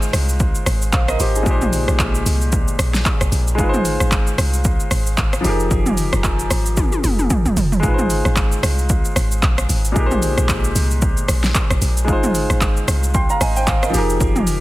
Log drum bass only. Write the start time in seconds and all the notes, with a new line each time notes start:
Already playing: G#1
0.13 C2
0.66 G#1
0.93 A#1
1.20 G#1
1.46 A#1
1.88 A#1
2.26 C2
2.79 A#1
3.21 A#1
3.32 A#1
3.59 G#1
4.01 G#1
4.38 C2
4.91 G#1
5.18 G#1
5.45 F1
5.71 F1
6.13 F1
6.51 G#1
7.04 F1
7.46 F1
7.57 F1
7.83 G#1
8.25 G#1
8.63 C2
9.16 G#1
9.43 A#1
9.69 G#1
9.96 A#1
10.38 A#1
10.75 C2
11.29 A#1
11.70 A#1
11.82 A#1
12.08 G#1
12.50 G#1
12.88 C2
13.41 G#1
13.68 G#1
13.94 F1
14.21 F1